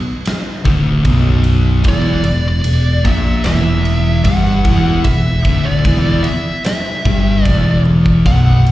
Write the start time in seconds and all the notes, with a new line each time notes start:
0.25 snare, ride
0.64 D1 D2 D3, kick, ride
1.04 B0 B1 B2, kick, ride
1.44 ride
1.84 E1 E2 E3, kick, ride
1.88 D5
2.24 E1 E2, ride
2.48 D5
2.64 E1 E2, ride
3.04 A#1 A#2 A#3 E5, kick, ride
3.44 E1 E2 E3 E5, snare, ride
3.85 ride
4.24 G1 G2 G3 F#5, kick, ride
4.64 E1 E2 E3, kick, ride
5.04 E1 E2 E5, kick, ride
5.45 D1 D2 D3, kick, ride
5.66 D5
5.85 E1 E2 E3, kick, ride
6.23 E5, ride
6.64 E5, snare, ride
7.05 G1 G2 G3, kick, ride
7.45 E1 E2 E3 D5, kick, ride
7.85 high tom
8.06 kick
8.26 B0 B1 B2 F#5, kick, ride
8.66 B0 B1, ride